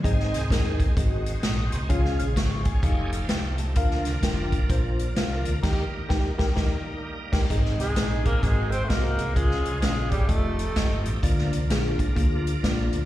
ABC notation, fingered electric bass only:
X:1
M:4/4
L:1/8
Q:"Swing" 1/4=129
K:Ab
V:1 name="Fingered electric bass" clef=bass
A,,, C,, E,,2 A,,,2 B,,, C,, | D,, B,,, A,,,2 F,,,2 C,,2 | =D,, C,, F,,,2 B,,,2 C,, D,, | E,, z E,, E,, E,, z2 E,, |
A,,, C,, B,,,2 A,,,2 C,, C,, | D,, C,, B,,, A,,, F,,,2 G,,, =A,,, | =D,, C,, B,,, z D,,2 B,,, D,, |]